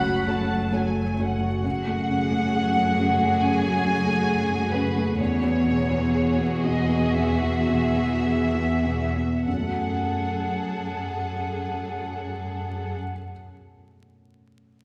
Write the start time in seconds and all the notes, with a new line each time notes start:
Already playing: F#1 C#2 F#2 C#3 F#3 A3 C#4 F#4 C#5 F#5 B5
0.03 F#4 F#5
0.26 A3 C#4 F#4 C#5 A5
0.49 A3
0.72 F#3 A3 C#4 F#4 C#5 G#5
0.95 A3
1.18 C#3 A3 C#4 F#4 C#5 F#5
1.41 A3 F#4
1.64 F#2 F#4 G#4 F#5
1.87 A3
2.09 C#3
2.31 A3
2.53 G#4
2.76 A3
2.98 C#3
3.20 A3
3.40 C#3 G#5
3.64 A3
3.85 C#3
4.07 A3
4.30 G#4
4.52 A3
4.72 C#3 B4
4.97 A3
5.17 E2 F#4 G#4 C#5
5.43 B3
5.67 B2
5.91 B3
6.14 G#4
6.39 B3
6.62 B2 D#5
6.89 B3
7.13 B2 E5
7.42 B3
7.69 B2
7.96 B3
8.25 G#4
8.55 B3
8.85 B2
9.17 B3
9.44 F#2 G#4 A4 F#5
9.53 F#3
9.60 A3
9.68 F#4
9.81 F#5